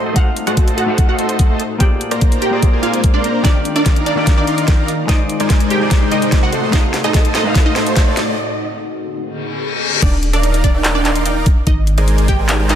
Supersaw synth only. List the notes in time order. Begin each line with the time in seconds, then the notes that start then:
0.06 A3 A4 C5 D#5 C6
0.16 A3 A4 C5 D#5 F#5
0.47 A3 A4 C5 D#5 A5
0.88 A3 A4 C5 D#5 F5
1.19 A3 A4 C5 D#5 C6
1.39 A3 A4 C5 D#5 F#5
1.50 A3 A4 C5 D#5 A5
2.11 A#3 A#4 C5 D5 A#5
2.53 A#3 A#4 C5 D5 A#5
2.73 A#3 A#4 C5 D5 G#5
3.14 A#3 A#4 C5 D5 C6
3.24 A#3 A#4 C5 D5 A#5
3.76 D#4 A#4 D5 F5 A#5
4.17 D#4 A#4 D5 F5 G5
4.48 D#4 A#4 D5 F5 C6
4.68 D#4 A#4 D5 F5
4.79 D#4 A#4 D5 F5 A#5
5.40 G#3 D#4 A#4 C5 D5 G#5
5.81 G#3 D#4 A#4 C5 D5 G#5
6.02 G#3 D#4 A#4 C5 D5 G5
6.32 G#3 D#4 A#4 D5
6.53 A3 A4 C5 D#5 C6
6.63 A3 A4 C5 D#5 C6
6.73 A3 A4 F#5
7.04 A3 A4 C5 D#5 A5
7.45 A3 A4 C5 D#5 F5
7.76 A3 A4 C5 D#5 C6
7.97 A3 A4 C5 D#5 F#5
8.07 A3 A4 C5 D#5 A5
10.02 D#4 A#4 D5 F5 G5
10.33 D#4 A#4 D5 F5 A#5
10.74 D#4 A#4 D5 F5 G5
11.05 D#4 A#4 D5 F5 C6
11.26 D#4 A#4 D5 F5 G5
11.36 D#4 A#4 D5 F5 A#5
11.98 G#3 D#4 A#4 C5 D5 G#5
12.39 G#3 D#4 A#4 C5 D5 G#5
12.59 G#3 D#4 A#4 C5 D5 G5